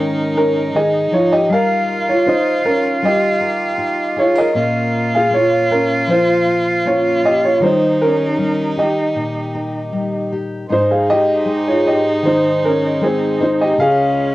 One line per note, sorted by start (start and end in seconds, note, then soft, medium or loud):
0.00 1.49 G#2 medium
0.00 0.72 D#3 medium
0.00 1.44 G#3 medium
0.00 0.32 C#4 medium
0.00 1.51 D#4 loud
0.00 0.35 A#4 medium
0.00 1.52 A#4 medium
0.35 0.71 C#4 medium
0.35 1.45 D#4 medium
0.35 0.75 A#4 medium
0.74 1.11 D#3 medium
0.74 1.10 G#4 medium
0.74 1.13 D#5 medium
1.11 1.49 F3 medium
1.11 1.30 F4 medium
1.11 1.31 C#5 medium
1.32 1.49 G4 medium
1.32 1.49 D#5 medium
1.49 3.01 G3 medium
1.49 2.25 D#4 medium
1.49 4.54 F4 loud
1.49 2.64 F4 medium
1.49 3.40 A#4 medium
1.49 2.10 F5 medium
1.53 2.05 A#4 medium
2.09 2.26 F4 medium
2.09 2.27 C#5 medium
2.26 3.77 D#4 medium
2.26 2.63 D#4 medium
2.26 2.62 C5 medium
2.64 3.01 C#4 medium
2.64 3.77 F4 medium
2.64 3.04 A#4 medium
3.02 4.51 G3 medium
3.02 4.22 D#5 medium
3.07 4.15 G4 medium
3.41 4.16 A#4 medium
3.78 4.50 D#4 medium
3.78 4.51 F4 medium
4.16 4.35 G#4 medium
4.16 4.38 C#5 medium
4.21 4.37 F4 medium
4.35 4.55 A#4 soft
4.35 5.10 D#5 medium
4.40 5.11 A#4 medium
4.54 7.57 A#2 medium
4.54 5.30 A#3 medium
4.54 6.85 C#4 medium
4.54 7.63 F4 loud
4.54 5.69 F4 medium
5.15 5.33 G#4 medium
5.15 5.34 F5 medium
5.31 6.84 A#3 medium
5.31 5.72 C#5 medium
5.36 5.70 F4 medium
5.71 6.07 C#4 medium
5.71 6.45 F4 soft
5.71 6.10 A#4 medium
6.07 7.57 F3 medium
6.07 6.88 C5 medium
6.12 6.83 F4 medium
6.85 7.57 A#3 medium
6.85 7.58 C#4 medium
6.85 7.23 F4 medium
6.85 7.25 C#5 medium
7.23 7.57 F4 medium
7.23 7.43 G4 medium
7.23 7.42 D#5 medium
7.44 7.63 F4 medium
7.44 7.63 C#5 medium
7.60 10.64 D#3 medium
7.60 8.36 G3 medium
7.60 9.91 D#4 medium
7.60 10.31 D#4 loud
7.60 8.75 G4 medium
7.60 9.54 A#4 medium
7.60 8.02 C5 medium
7.65 7.99 D#4 medium
8.01 8.75 C#4 medium
8.01 8.80 A#4 medium
8.37 9.91 G3 medium
8.76 10.31 G4 medium
8.76 10.28 D#5 medium
8.81 10.29 G4 medium
9.15 10.65 A#2 medium
9.55 10.66 A#4 medium
9.92 10.65 G3 medium
9.92 10.65 D#4 soft
10.33 10.66 G4 soft
10.68 13.74 G#2 medium
10.68 13.78 G#2 medium
10.68 14.35 G#3 medium
10.68 13.75 D#4 medium
10.68 13.81 D#4 loud
10.68 11.85 D#4 medium
10.68 13.74 C5 medium
10.72 10.89 D#4 medium
10.72 10.91 C5 medium
10.91 11.08 G#4 medium
10.91 11.10 F5 medium
11.10 11.64 G4 medium
11.10 11.69 D#5 loud
11.46 13.00 G#3 medium
11.68 11.86 F4 medium
11.68 11.87 C#5 medium
11.88 12.23 G4 medium
11.88 12.22 D#5 medium
12.23 13.73 D#3 medium
12.23 12.65 C5 medium
12.27 12.62 D#4 medium
12.63 13.01 C#4 medium
12.63 13.38 D#4 soft
12.63 13.00 A#4 medium
13.01 13.73 G#3 medium
13.01 13.74 C4 medium
13.01 13.39 C4 medium
13.01 13.42 G#4 medium
13.40 13.78 D#4 medium
13.40 13.59 D#4 medium
13.40 13.60 C5 medium
13.61 13.79 G4 medium
13.61 13.80 D#5 medium
13.78 14.35 C#2 medium
13.78 14.35 C#3 medium
13.78 14.35 C#4 loud
13.78 14.35 F4 medium
13.78 14.35 G#4 medium
13.78 14.33 G#4 medium
13.78 14.35 F5 loud